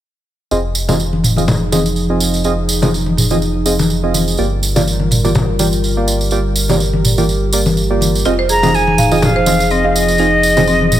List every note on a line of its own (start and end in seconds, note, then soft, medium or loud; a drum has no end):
0.51 4.36 F1 medium
0.51 4.35 F3 medium
0.51 0.58 C4 medium
0.51 4.35 D#4 medium
0.51 0.58 F4 medium
0.51 0.58 G#4 medium
0.51 4.35 G#4 medium
0.51 0.58 D#5 medium
0.51 tambourine soft
0.75 tambourine medium
0.89 0.95 C4 medium
0.89 0.95 F4 medium
0.89 0.95 G#4 medium
0.89 0.95 D#5 medium
0.89 tambourine soft
0.89 high conga medium
0.89 low conga medium
1.00 tambourine soft
1.13 high conga medium
1.24 mid tom medium
1.24 tambourine medium
1.36 1.43 C4 medium
1.36 1.43 F4 medium
1.36 1.43 G#4 medium
1.36 1.43 D#5 medium
1.36 tambourine soft
1.36 high conga medium
1.48 mid tom medium
1.48 tambourine soft
1.48 high conga medium
1.48 low conga loud
1.72 1.79 C4 medium
1.72 1.79 F4 medium
1.72 1.79 G#4 medium
1.72 1.79 D#5 medium
1.72 tambourine medium
1.72 high conga medium
1.86 tambourine soft
1.96 tambourine soft
2.10 2.42 C4 medium
2.10 2.42 F4 medium
2.10 2.42 G#4 medium
2.10 2.42 D#5 medium
2.20 tambourine medium
2.34 tambourine soft
2.44 2.52 C4 medium
2.44 2.52 F4 medium
2.44 2.52 G#4 medium
2.44 2.52 D#5 medium
2.44 tambourine soft
2.69 tambourine medium
2.82 2.88 C4 medium
2.82 2.88 F4 medium
2.82 2.88 G#4 medium
2.82 2.88 D#5 medium
2.82 tambourine soft
2.82 high conga loud
2.82 low conga medium
2.94 tambourine soft
3.06 high conga medium
3.17 mid tom medium
3.17 tambourine medium
3.30 3.37 C4 medium
3.30 3.37 F4 medium
3.30 3.37 G#4 medium
3.30 3.37 D#5 medium
3.30 tambourine soft
3.30 high conga medium
3.42 tambourine soft
3.66 3.73 C4 medium
3.66 3.73 F4 medium
3.66 3.73 G#4 medium
3.66 3.73 D#5 medium
3.66 tambourine medium
3.79 tambourine soft
3.79 high conga loud
3.90 tambourine soft
4.03 4.36 C4 medium
4.03 4.36 F4 medium
4.03 4.36 G#4 medium
4.03 4.36 D#5 medium
4.14 tambourine medium
4.14 high conga medium
4.28 tambourine soft
4.37 8.23 G1 medium
4.37 8.22 G3 medium
4.37 4.46 A#3 medium
4.37 4.46 F4 medium
4.37 6.30 F4 medium
4.37 4.46 G4 medium
4.37 8.22 A#4 medium
4.37 4.46 D5 medium
4.37 tambourine soft
4.63 tambourine medium
4.76 4.82 A#3 medium
4.76 4.82 F4 medium
4.76 4.82 G4 medium
4.76 4.82 D5 medium
4.76 tambourine medium
4.76 high conga medium
4.76 low conga medium
4.87 tambourine soft
5.00 high conga medium
5.11 mid tom medium
5.11 tambourine medium
5.24 5.30 A#3 medium
5.24 5.30 F4 medium
5.24 5.30 G4 medium
5.24 5.30 D5 medium
5.24 tambourine soft
5.24 high conga medium
5.35 mid tom medium
5.35 tambourine soft
5.35 high conga medium
5.35 low conga medium
5.59 5.67 A#3 medium
5.59 5.67 F4 medium
5.59 5.67 G4 medium
5.59 5.67 D5 medium
5.59 tambourine medium
5.59 high conga medium
5.73 tambourine soft
5.84 tambourine soft
5.97 6.30 A#3 medium
5.97 6.30 F4 medium
5.97 6.30 G4 medium
5.97 6.29 D5 medium
6.08 tambourine medium
6.21 tambourine soft
6.31 6.39 A#3 medium
6.31 6.39 F4 medium
6.31 6.39 G4 medium
6.31 8.24 G4 medium
6.31 6.39 D5 medium
6.31 tambourine soft
6.56 tambourine medium
6.69 6.75 A#3 medium
6.69 6.75 F4 medium
6.69 6.75 G4 medium
6.69 6.75 D5 medium
6.69 tambourine soft
6.69 high conga medium
6.69 low conga medium
6.80 tambourine soft
6.93 high conga medium
7.05 mid tom medium
7.05 tambourine medium
7.18 7.24 A#3 medium
7.18 7.24 F4 medium
7.18 7.24 G4 medium
7.18 7.24 D5 medium
7.18 tambourine soft
7.18 high conga medium
7.29 tambourine soft
7.53 7.60 A#3 medium
7.53 7.60 F4 medium
7.53 7.60 G4 medium
7.53 7.60 D5 medium
7.53 tambourine loud
7.66 tambourine soft
7.66 high conga loud
7.77 tambourine soft
7.90 8.23 A#3 medium
7.90 8.23 F4 medium
7.90 8.23 G4 medium
7.90 8.23 D5 medium
8.01 tambourine medium
8.01 high conga medium
8.15 tambourine soft
8.25 11.00 F1 medium
8.25 11.00 F3 medium
8.25 8.33 C4 medium
8.25 10.17 D#4 medium
8.25 8.33 F4 medium
8.25 8.33 G#4 medium
8.25 11.00 G#4 medium
8.25 8.33 D#5 medium
8.25 tambourine soft
8.39 8.49 C5 medium
8.49 8.57 G#4 medium
8.49 8.76 A#5 loud
8.49 tambourine medium
8.63 8.69 C4 medium
8.63 8.69 F4 medium
8.63 8.69 G#4 medium
8.63 8.73 C5 medium
8.63 8.69 D#5 medium
8.63 tambourine soft
8.63 high conga medium
8.63 low conga medium
8.74 9.25 G#5 medium
8.74 tambourine soft
8.87 high conga medium
8.98 9.10 F5 medium
8.98 mid tom medium
8.98 tambourine medium
9.11 9.17 C4 medium
9.11 9.17 F4 medium
9.11 9.17 G#4 medium
9.11 9.18 G#4 medium
9.11 9.17 D#5 medium
9.11 tambourine soft
9.11 high conga medium
9.22 9.73 F5 medium
9.22 mid tom medium
9.22 tambourine soft
9.22 high conga medium
9.22 low conga loud
9.36 9.46 C5 medium
9.46 9.54 C4 medium
9.46 9.54 F4 medium
9.46 9.54 G#4 medium
9.46 9.54 D#5 medium
9.46 tambourine medium
9.46 high conga medium
9.60 9.70 C5 medium
9.60 tambourine soft
9.71 9.78 C4 medium
9.71 9.88 D#5 medium
9.71 tambourine soft
9.84 10.17 C4 medium
9.84 10.17 F4 medium
9.84 10.17 G#4 medium
9.84 10.17 D#5 medium
9.84 9.94 F5 medium
9.89 9.97 F5 medium
9.95 11.00 D#5 medium
9.95 tambourine medium
10.08 tambourine medium
10.18 10.26 C4 medium
10.18 10.31 D#4 medium
10.18 11.00 F4 medium
10.18 10.26 F4 medium
10.18 10.26 G#4 medium
10.18 10.26 D#5 medium
10.18 tambourine soft
10.43 tambourine medium
10.57 10.63 C4 medium
10.57 10.63 F4 medium
10.57 10.63 G#4 medium
10.57 10.67 C5 medium
10.57 10.63 D#5 medium
10.57 tambourine soft
10.57 high conga medium
10.57 low conga medium
10.67 10.75 C4 medium
10.67 tambourine soft
10.81 high conga medium
10.92 mid tom medium
10.92 tambourine medium